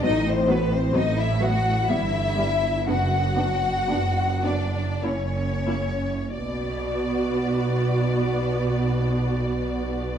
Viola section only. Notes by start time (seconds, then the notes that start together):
0.03 F#3 B3
0.48 F#3 B3
0.94 F#3 B3
1.40 F#3 B3
1.88 G3 B3
2.36 G3 B3
2.87 B3 D4
3.36 B3 D4
3.89 B3 D4
4.43 B3 D4
5.03 A#3 E4
5.67 A#3 E4
6.34 B3 F#4